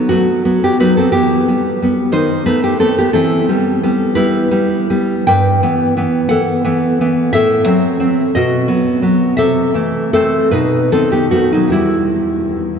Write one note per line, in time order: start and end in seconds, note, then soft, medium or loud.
0.09 0.44 F#3 soft
0.09 0.60 A3 medium
0.09 0.44 B3 soft
0.09 0.60 F#4 medium
0.45 0.79 F#3 soft
0.45 0.63 B3 soft
0.64 0.79 B3 soft
0.64 0.80 G4 medium
0.80 1.10 F#3 soft
0.80 1.11 B3 soft
0.80 0.96 D#4 medium
0.80 0.96 B4 medium
0.97 1.13 C4 soft
0.97 1.12 A4 medium
1.12 1.46 E3 medium
1.12 1.47 B3 medium
1.12 2.08 G4 medium
1.48 1.81 G3 soft
1.48 1.82 B3 soft
1.82 2.11 G3 soft
1.82 2.12 B3 soft
2.12 2.44 D#3 medium
2.12 2.44 D#4 medium
2.12 2.44 C5 medium
2.46 2.80 A3 soft
2.46 2.64 B3 soft
2.46 2.62 D#4 soft
2.46 2.62 B4 medium
2.64 2.80 B3 soft
2.64 2.79 G4 medium
2.79 3.11 A3 soft
2.79 2.99 B3 soft
2.79 2.95 C4 medium
2.79 2.96 A4 medium
2.98 3.14 B3 medium
2.98 3.13 G4 medium
3.13 3.47 E3 medium
3.13 4.11 C4 medium
3.13 4.11 A4 medium
3.49 3.83 G3 soft
3.49 3.82 B3 soft
3.83 4.15 G3 soft
3.83 4.15 B3 soft
4.15 4.50 G3 soft
4.15 4.50 B3 soft
4.15 5.23 E4 medium
4.15 5.22 B4 medium
4.51 4.89 G3 soft
4.51 4.89 B3 soft
4.90 5.23 G3 soft
4.90 5.23 B3 soft
5.27 5.61 G2 medium
5.27 6.26 B4 medium
5.27 6.25 G5 medium
5.63 5.96 E3 soft
5.63 5.96 B3 soft
5.97 6.29 E3 soft
5.97 6.29 B3 soft
6.29 6.64 E3 soft
6.29 6.63 B3 soft
6.29 7.29 A4 medium
6.29 7.28 F#5 medium
6.65 7.00 E3 soft
6.65 7.00 B3 soft
7.01 7.31 E3 soft
7.01 7.31 B3 soft
7.33 7.66 A2 medium
7.33 8.30 A4 medium
7.33 8.29 E5 medium
7.66 7.99 F#3 soft
7.66 7.99 C4 soft
8.00 8.30 F#3 soft
8.00 8.30 C4 soft
8.35 8.68 B2 medium
8.35 8.66 F#4 medium
8.35 8.67 D#5 medium
8.68 9.01 F#3 soft
8.68 9.01 B3 soft
9.02 9.34 F#3 soft
9.02 9.34 B3 soft
9.37 9.73 C3 medium
9.37 10.08 A4 medium
9.37 10.09 E5 medium
9.74 10.12 E3 soft
9.74 10.12 A3 soft
10.13 10.48 E3 soft
10.13 10.48 A3 soft
10.13 10.49 C4 medium
10.13 10.50 A4 medium
10.51 10.90 B2 medium
10.51 10.89 D#4 medium
10.51 10.89 B4 medium
10.92 11.31 D#3 soft
10.92 11.12 B3 soft
10.92 11.10 C4 medium
10.92 11.11 A4 medium
11.12 11.30 B3 soft
11.12 11.31 G4 medium
11.31 11.68 D#3 soft
11.31 11.50 A3 soft
11.31 11.68 B3 soft
11.31 11.51 F#4 medium
11.52 11.69 F#3 soft
11.52 11.72 D#4 medium
11.68 12.79 E2 soft
11.68 12.79 E3 soft
11.72 12.79 G3 soft
11.72 12.79 E4 medium